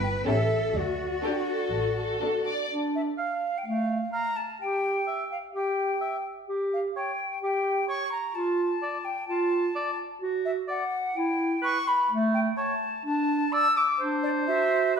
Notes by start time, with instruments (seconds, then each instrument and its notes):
Already playing: double bass section G1, viola section B3, violin section E4 B4, cello section B4
0.03 flute G5
0.27 double bass section A1, viola section C#4, violin section G4 A4, cello section A4, flute E5
0.76 double bass section D2, cello section F#4, flute D5
1.25 viola section D4, violin section G4 A4
1.49 violin section A4
1.74 double bass section A1
1.97 violin section A4
2.22 viola section D4, violin section A4
2.46 violin section D5
2.71 clarinet D4
2.95 flute E5
3.18 oboe F5, flute F5
3.58 flute G5
3.65 clarinet A3, flute F5
4.12 oboe F5, flute A#5
4.36 flute A5
4.61 clarinet G4, flute G5
5.07 oboe E5
5.31 flute F5
5.55 clarinet G4, flute G5
6.01 oboe E5
6.48 clarinet G4
6.73 flute F5
6.96 oboe C#5, flute G5
7.43 clarinet G4, flute G5
7.88 oboe C#5, flute C#6
8.11 flute A#5
8.35 clarinet F4, flute A5
8.82 oboe D5
9.05 flute G5
9.28 clarinet F4, flute A5
9.76 oboe D5
10.21 clarinet F#4
10.45 flute E5
10.68 oboe D5, flute F#5
11.16 clarinet E4, flute G5
11.62 oboe B4, flute C#6
11.87 flute B5
12.10 clarinet A3
12.34 flute G5
12.56 oboe C#5, flute A5
13.05 clarinet D4, flute A5
13.52 oboe D5, flute E6
13.77 flute D6
14.00 clarinet D4, oboe C5
14.23 flute D5
14.47 clarinet F#4, flute E5
14.96 oboe B4, flute E5